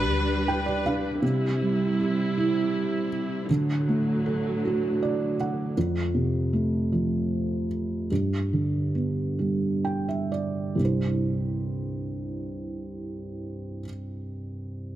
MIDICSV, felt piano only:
0, 0, Header, 1, 2, 480
1, 0, Start_track
1, 0, Key_signature, 0, "major"
1, 0, Tempo, 756620
1, 777, Time_signature, 6, 3, 24, 8
1, 4139, Tempo, 792602
1, 5099, Tempo, 868307
1, 6059, Tempo, 958466
1, 6539, Tempo, 996678
1, 8539, End_track
2, 0, Start_track
2, 0, Title_t, "Felt piano"
2, 0, Program_c, 0, 0
2, 0, Control_c, 0, 64, 127
2, 0, Note_on_c, 0, 55, 54
2, 0, Note_on_c, 0, 62, 46
2, 0, Note_on_c, 0, 67, 37
2, 306, Note_on_c, 0, 79, 55
2, 413, Note_off_c, 0, 79, 0
2, 420, Note_on_c, 0, 74, 52
2, 514, Note_off_c, 0, 62, 0
2, 530, Note_off_c, 0, 74, 0
2, 544, Note_on_c, 0, 62, 42
2, 545, Note_on_c, 0, 77, 53
2, 751, Note_off_c, 0, 55, 0
2, 753, Note_off_c, 0, 67, 0
2, 764, Note_off_c, 0, 77, 0
2, 773, Note_off_c, 0, 62, 0
2, 775, Note_on_c, 0, 48, 51
2, 786, Control_c, 0, 64, 0
2, 915, Control_c, 0, 64, 127
2, 1027, Note_on_c, 0, 55, 43
2, 1271, Note_on_c, 0, 67, 40
2, 1508, Note_on_c, 0, 64, 41
2, 1955, Note_off_c, 0, 55, 0
2, 2189, Note_off_c, 0, 48, 0
2, 2197, Note_off_c, 0, 67, 0
2, 2199, Note_off_c, 0, 64, 0
2, 2222, Note_on_c, 0, 50, 52
2, 2223, Control_c, 0, 64, 0
2, 2333, Control_c, 0, 64, 127
2, 2465, Note_on_c, 0, 57, 40
2, 2702, Note_on_c, 0, 69, 36
2, 2952, Note_on_c, 0, 66, 44
2, 3188, Note_on_c, 0, 74, 51
2, 3393, Note_off_c, 0, 57, 0
2, 3404, Note_off_c, 0, 74, 0
2, 3428, Note_on_c, 0, 78, 49
2, 3631, Note_off_c, 0, 50, 0
2, 3631, Note_off_c, 0, 69, 0
2, 3641, Note_off_c, 0, 66, 0
2, 3644, Note_off_c, 0, 78, 0
2, 3662, Control_c, 0, 64, 0
2, 3662, Note_on_c, 0, 41, 50
2, 3767, Control_c, 0, 64, 127
2, 3898, Note_on_c, 0, 48, 42
2, 4143, Note_on_c, 0, 57, 37
2, 4381, Note_on_c, 0, 53, 38
2, 4828, Note_off_c, 0, 48, 0
2, 5075, Note_off_c, 0, 57, 0
2, 5077, Note_off_c, 0, 41, 0
2, 5080, Note_off_c, 0, 53, 0
2, 5102, Note_on_c, 0, 43, 45
2, 5104, Control_c, 0, 64, 0
2, 5212, Control_c, 0, 64, 127
2, 5332, Note_on_c, 0, 50, 35
2, 5563, Note_on_c, 0, 59, 34
2, 5806, Note_on_c, 0, 55, 34
2, 6059, Note_on_c, 0, 79, 43
2, 6167, Note_off_c, 0, 79, 0
2, 6179, Note_on_c, 0, 76, 37
2, 6275, Note_off_c, 0, 50, 0
2, 6287, Note_off_c, 0, 76, 0
2, 6295, Note_on_c, 0, 74, 39
2, 6513, Note_on_c, 0, 36, 34
2, 6516, Note_off_c, 0, 43, 0
2, 6517, Note_off_c, 0, 55, 0
2, 6517, Note_off_c, 0, 59, 0
2, 6521, Note_off_c, 0, 74, 0
2, 6524, Note_on_c, 0, 43, 31
2, 6535, Note_on_c, 0, 48, 32
2, 6542, Note_on_c, 0, 55, 28
2, 6544, Control_c, 0, 64, 0
2, 6549, Note_on_c, 0, 64, 32
2, 6559, Note_on_c, 0, 72, 37
2, 6630, Control_c, 0, 64, 127
2, 7971, Note_off_c, 0, 36, 0
2, 7981, Note_off_c, 0, 43, 0
2, 7992, Note_off_c, 0, 48, 0
2, 7999, Note_off_c, 0, 55, 0
2, 8006, Note_off_c, 0, 64, 0
2, 8017, Note_off_c, 0, 72, 0
2, 8539, End_track
0, 0, End_of_file